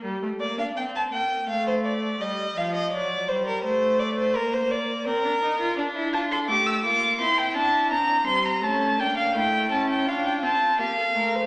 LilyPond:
<<
  \new Staff \with { instrumentName = "Violin" } { \time 4/4 \key g \minor \tempo 4 = 84 r1 | r1 | r8 a''16 c'''16 d'''16 e'''16 d'''8 c'''16 g''16 a''8 bes''8 c'''16 bes''16 | a''8 g''16 f''16 g''8 a''16 g''16 f''16 g''16 a''8 f''4 | }
  \new Staff \with { instrumentName = "Violin" } { \time 4/4 \key g \minor r8 d''16 f''16 g''16 a''16 g''8 f''16 c''16 d''8 ees''8 f''16 ees''16 | d''8 c''16 bes'16 c''8 d''16 c''16 bes'16 c''16 d''8 bes'4 | d'16 e'16 f'16 a'16 g'8 f'8 e'4 d'8 c'8 | cis'8 d'8 e'4 f'4 g'16 a'16 bes'16 c''16 | }
  \new Staff \with { instrumentName = "Viola" } { \time 4/4 \key g \minor g16 a16 bes16 d'16 c'8 bes8 a4 g8 f8 | fis8 g8 a4 bes4 c'16 d'16 ees'16 f'16 | d'4 a8 bes8 c'8 d'8 c'8 g8 | a8 bes8 a8 cis'8 d'8 c'8 bes8 a8 | }
>>